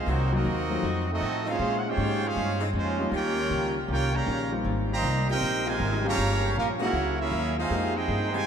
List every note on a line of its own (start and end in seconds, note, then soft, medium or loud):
0.06 0.43 C2 loud
0.06 0.33 C3 medium
0.06 0.24 D#3 medium
0.06 0.32 D#3 medium
0.06 0.33 F#3 medium
0.06 0.32 F#3 medium
0.06 0.24 A#3 medium
0.06 0.33 A#3 medium
0.06 0.24 C4 medium
0.06 0.32 C4 medium
0.06 0.34 D#4 medium
0.06 0.33 D#4 medium
0.06 0.24 F#4 loud
0.06 0.33 F#4 medium
0.06 0.34 C5 medium
0.32 0.44 F#3 medium
0.32 1.09 F#3 medium
0.32 0.44 A#3 medium
0.32 0.84 A#3 medium
0.32 0.44 C4 medium
0.32 1.09 C4 medium
0.32 0.44 D#4 medium
0.32 1.08 D#4 medium
0.32 0.44 F#4 medium
0.32 1.09 F#4 medium
0.32 0.84 A#4 medium
0.32 1.09 D#5 loud
0.44 0.82 D#2 loud
0.44 0.71 C3 medium
0.44 0.71 F#3 medium
0.44 0.71 A#3 medium
0.44 0.72 D#4 medium
0.70 0.82 F#3 medium
0.70 0.82 A3 medium
0.70 0.82 C4 medium
0.70 0.82 D#4 medium
0.70 0.82 F4 medium
0.82 1.20 F2 medium
0.82 1.09 F3 medium
0.82 1.10 A3 medium
0.82 1.10 D#4 medium
0.82 1.10 F#4 medium
1.09 1.44 A3 medium
1.09 1.44 C4 medium
1.09 1.46 C4 medium
1.09 1.44 D#4 medium
1.09 1.46 F#4 medium
1.09 1.46 A4 medium
1.09 1.46 D#5 loud
1.21 1.58 A2 loud
1.21 1.48 F3 medium
1.21 1.48 A3 medium
1.21 1.48 D#4 medium
1.21 1.48 F#4 medium
1.46 1.55 C#3 medium
1.46 1.55 G#3 medium
1.46 1.76 G#3 medium
1.46 1.55 C4 medium
1.46 1.76 C#4 medium
1.46 1.55 D#4 loud
1.46 1.76 F4 medium
1.50 1.77 C#4 medium
1.50 1.77 G#4 medium
1.50 1.77 C5 medium
1.50 1.77 F5 loud
1.59 1.96 A#2 loud
1.59 1.86 A#2 medium
1.59 1.82 G#3 medium
1.59 1.87 G#3 medium
1.59 1.82 C4 medium
1.59 1.83 C#4 medium
1.59 1.87 C#4 medium
1.59 1.83 D#4 medium
1.59 1.87 D#4 medium
1.59 1.83 F4 medium
1.78 1.86 F#5 medium
1.87 2.23 G#3 medium
1.87 2.23 C#4 medium
1.87 2.25 F4 medium
1.87 2.24 G4 medium
1.87 2.25 C5 loud
1.87 2.25 C#5 medium
1.87 2.25 G5 loud
1.97 2.34 G#2 loud
1.97 2.24 A#2 medium
1.97 2.25 G#3 medium
1.97 2.25 C#4 medium
1.97 2.25 D#4 medium
2.24 2.61 G#3 medium
2.24 2.61 C#4 medium
2.24 2.63 C#4 medium
2.24 2.61 F4 medium
2.24 2.63 G#4 loud
2.24 2.63 C5 medium
2.24 2.63 F5 loud
2.35 2.72 G2 medium
2.35 2.62 A#2 medium
2.35 2.63 G#3 medium
2.35 2.63 C#4 medium
2.35 2.63 D#4 medium
2.60 2.69 C#3 loud
2.60 2.69 G#3 medium
2.60 2.69 C4 medium
2.60 2.69 D#4 loud
2.73 3.10 F2 loud
2.73 3.00 A#2 medium
2.73 3.10 F3 medium
2.73 3.00 G#3 medium
2.73 3.10 G#3 medium
2.73 3.01 C#4 medium
2.73 3.10 C#4 medium
2.73 3.01 D#4 medium
2.78 3.12 G#3 medium
2.78 3.12 C#4 medium
2.78 3.11 F4 medium
2.78 3.12 C5 loud
2.99 3.11 G3 medium
2.99 3.11 A#3 medium
2.99 3.11 C#4 medium
2.99 3.11 D#4 medium
2.99 3.11 F4 medium
3.12 3.49 D#2 medium
3.12 3.38 D#3 medium
3.12 4.19 D#3 loud
3.12 3.38 G3 medium
3.12 4.19 G3 loud
3.12 3.75 A#3 loud
3.12 3.75 C#4 loud
3.12 4.19 C#4 medium
3.12 3.39 C#4 medium
3.12 4.19 F4 loud
3.12 3.39 F4 medium
3.12 3.77 F4 medium
3.12 3.75 G4 loud
3.12 3.77 A#4 loud
3.12 3.77 G5 loud
3.16 3.77 C#5 medium
3.49 3.87 C#2 medium
3.49 3.77 D#3 medium
3.49 3.77 G3 medium
3.49 3.77 C#4 medium
3.49 3.78 F4 medium
3.88 4.25 C2 medium
3.88 4.15 D#3 medium
3.88 4.15 G3 medium
3.88 4.12 A#3 medium
3.88 4.12 C#4 medium
3.88 4.15 C#4 medium
3.88 4.16 F4 medium
3.88 4.13 F4 loud
3.88 4.12 G4 medium
3.88 4.13 A#4 medium
3.88 4.13 C#5 medium
3.88 4.13 G5 loud
4.14 4.52 C#3 medium
4.14 4.52 G3 medium
4.14 4.52 A#3 medium
4.14 4.53 G4 medium
4.14 4.53 C#5 medium
4.14 4.53 F5 medium
4.14 4.53 A#5 loud
4.26 4.63 A#1 loud
4.26 4.53 D#3 medium
4.26 4.53 G3 medium
4.26 4.53 C#4 medium
4.26 4.53 F4 medium
4.52 5.00 G3 medium
4.52 5.00 A#3 medium
4.52 5.01 C4 medium
4.52 5.00 D#4 medium
4.52 5.01 F4 medium
4.65 5.01 G#1 medium
4.65 4.91 G#2 medium
4.65 4.91 G3 medium
4.65 4.91 C4 medium
4.65 4.92 F4 medium
4.91 5.26 D#3 medium
4.91 5.26 G3 medium
4.91 5.26 A#3 medium
4.91 5.27 G4 loud
4.91 5.27 C5 loud
4.91 5.27 D#5 loud
4.91 5.27 A#5 loud
5.02 5.39 C2 loud
5.02 5.29 G#2 medium
5.02 5.29 G3 medium
5.02 5.30 C4 medium
5.02 5.30 F4 medium
5.28 5.37 C3 medium
5.28 5.37 G3 medium
5.28 5.37 A#3 medium
5.28 5.64 C4 medium
5.28 5.64 D#4 medium
5.28 5.65 D#4 loud
5.28 5.37 F4 loud
5.28 5.64 G4 medium
5.28 5.65 A#4 loud
5.28 5.65 C5 medium
5.28 5.65 G5 loud
5.41 5.78 A#1 medium
5.41 5.67 G#2 medium
5.41 5.68 G3 medium
5.41 5.68 C4 medium
5.41 5.68 F4 medium
5.66 6.14 C3 loud
5.66 6.05 C3 medium
5.66 6.05 D#3 loud
5.66 6.14 G#3 loud
5.66 6.05 G#3 medium
5.66 6.14 A#3 loud
5.66 6.06 D#4 loud
5.66 6.14 F4 loud
5.66 6.06 A#4 medium
5.66 6.06 C5 medium
5.66 6.06 G#5 loud
5.79 6.16 G#1 loud
5.79 6.05 G#2 medium
5.79 6.05 G3 medium
5.79 6.06 C4 medium
5.79 6.06 F4 medium
6.04 6.53 C#3 loud
6.04 6.53 F3 loud
6.04 6.53 G3 medium
6.04 6.53 A#3 medium
6.04 6.52 A#3 loud
6.04 6.53 C#4 medium
6.04 6.53 F4 medium
6.04 6.53 G4 medium
6.04 6.54 A#5 loud
6.08 6.54 G4 medium
6.08 6.54 C#5 loud
6.08 6.54 F5 medium
6.16 6.54 G1 loud
6.16 6.43 G2 medium
6.16 6.33 C#3 loud
6.16 6.43 F3 medium
6.16 6.33 G3 medium
6.16 6.33 A#3 medium
6.16 6.44 A#3 medium
6.16 6.44 C#4 medium
6.16 6.33 F4 loud
6.55 6.92 A#1 medium
6.55 6.81 G2 medium
6.55 6.81 F3 medium
6.55 6.82 A#3 medium
6.55 6.67 A#3 medium
6.55 6.82 C#4 medium
6.55 6.68 C#4 medium
6.55 6.69 C#4 medium
6.55 6.68 F4 medium
6.55 6.69 G4 medium
6.55 6.68 A#4 medium
6.55 6.69 F5 medium
6.80 6.89 E3 medium
6.80 6.89 G#3 medium
6.80 6.92 G#3 medium
6.80 6.89 A#3 medium
6.80 6.92 A#3 medium
6.80 7.17 A#3 medium
6.80 6.93 C#4 medium
6.80 7.17 C#4 medium
6.80 6.89 D#4 loud
6.80 6.93 E4 medium
6.80 7.17 E4 medium
6.80 7.16 F#4 medium
6.80 6.93 F#4 medium
6.80 7.17 A#4 medium
6.80 7.17 C#5 medium
6.80 7.17 F#5 loud
6.92 7.30 C#2 medium
6.92 7.19 F#3 medium
6.92 7.20 A#3 medium
6.92 7.20 E4 medium
6.92 7.20 G#4 medium
7.19 7.57 A#3 medium
7.19 7.57 C#4 medium
7.19 7.58 C#4 medium
7.19 7.57 E4 medium
7.19 7.57 G#4 medium
7.19 7.57 A#4 medium
7.19 7.58 E5 loud
7.31 7.68 D#2 loud
7.31 7.58 F#3 medium
7.31 7.58 A#3 medium
7.31 7.58 E4 medium
7.31 7.59 G#4 medium
7.57 7.92 G#3 medium
7.57 7.92 C4 medium
7.57 7.92 D#4 medium
7.57 7.92 F4 medium
7.57 7.93 G#4 medium
7.57 7.93 C5 medium
7.57 7.93 F5 loud
7.70 8.07 F2 loud
7.70 7.96 F3 medium
7.70 7.93 G#3 medium
7.70 7.97 A#3 medium
7.70 7.93 A#3 medium
7.70 7.93 C4 medium
7.70 7.97 D#4 medium
7.70 7.93 D#4 medium
7.70 7.93 G4 medium
7.70 7.97 G#4 medium
7.95 8.33 C4 medium
7.95 8.33 D#4 medium
7.95 8.34 D#4 loud
7.95 8.33 G#4 medium
7.95 8.34 G#4 loud
7.95 8.33 C5 medium
7.95 8.33 G5 loud
8.08 8.45 G2 loud
8.08 8.34 F3 medium
8.08 8.35 A#3 medium
8.08 8.35 D#4 medium
8.08 8.35 G#4 medium
8.33 8.47 C3 medium
8.33 8.47 D#3 medium
8.33 8.42 D#3 loud
8.33 8.47 G#3 medium
8.33 8.42 G#3 medium
8.33 8.42 A#3 medium
8.33 8.47 D#4 medium
8.33 8.41 G4 loud
8.33 8.47 C5 loud
8.33 8.47 G5 loud
8.33 8.47 G#5 loud